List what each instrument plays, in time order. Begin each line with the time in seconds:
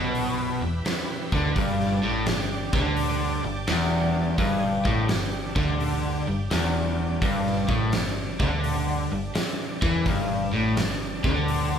Already playing: fingered electric bass B1, overdriven electric guitar B2, tonewheel organ E4 G4 B4
0.15 open hi-hat
0.61 fingered electric bass E1, overdriven electric guitar E2
0.85 muted overdriven electric guitar stroke, snare, open hi-hat
1.32 fingered electric bass D2, overdriven electric guitar D3, kick
1.55 fingered electric bass G1, overdriven electric guitar G2, tonewheel organ G3 D4 G4 D5, kick, open hi-hat
1.80 snare
2.03 fingered electric bass A1, overdriven electric guitar A2
2.26 fingered electric bass G1, overdriven electric guitar G2, snare, open hi-hat
2.73 fingered electric bass D2, overdriven electric guitar D3, kick
2.97 open hi-hat
3.44 fingered electric bass G1, overdriven electric guitar G2
3.67 fingered electric bass E1, overdriven electric guitar E2, snare, open hi-hat
4.38 fingered electric bass G1, overdriven electric guitar G2, tonewheel organ G#3 D#4 G#4, kick, open hi-hat
4.62 tonewheel organ G3 D4 G4
4.85 fingered electric bass A1, overdriven electric guitar A2, kick
5.09 fingered electric bass G1, overdriven electric guitar G2, snare, open hi-hat
5.56 fingered electric bass D2, overdriven electric guitar D3, kick
5.80 open hi-hat
6.27 fingered electric bass G1, overdriven electric guitar G2
6.51 fingered electric bass E1, overdriven electric guitar E2, snare, open hi-hat
7.22 fingered electric bass G1, overdriven electric guitar G2, tonewheel organ G3 D4, kick, open hi-hat
7.46 snare
7.68 fingered electric bass A1, overdriven electric guitar A2, kick
7.92 fingered electric bass G1, overdriven electric guitar G2, snare, open hi-hat
8.40 fingered electric bass D2, overdriven electric guitar D3, kick
8.64 open hi-hat
9.11 fingered electric bass G1, overdriven electric guitar G2
9.35 muted fingered electric bass stroke, muted overdriven electric guitar stroke, snare, open hi-hat
9.82 fingered electric bass E2, overdriven electric guitar E3, kick
10.05 fingered electric bass G1, overdriven electric guitar G2, tonewheel organ G#3 D#4, kick, open hi-hat
10.28 tonewheel organ G3 D4
10.53 fingered electric bass A1, overdriven electric guitar A2
10.77 overdriven electric guitar G2, snare, open hi-hat
11.24 fingered electric bass D2, overdriven electric guitar D3, kick
11.48 open hi-hat